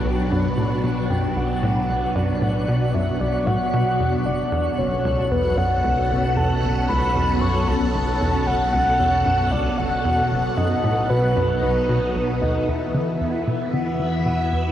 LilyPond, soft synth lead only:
\new Staff \with { instrumentName = "Soft synth lead" } { \time 4/4 \key b \minor \tempo 4 = 114 g''8 b''4. g''8 fis''4. | d''4. e''8 d''8 fis''4. | d''4 cis''4 b'8 fis''4. | a''4 b''4 cis'''8 a''4. |
fis''8 fis''4. d''8 fis''4. | dis''4 b'4 b'4. dis''8 | \key c \lydian e''2 fis''4 fis''4 | }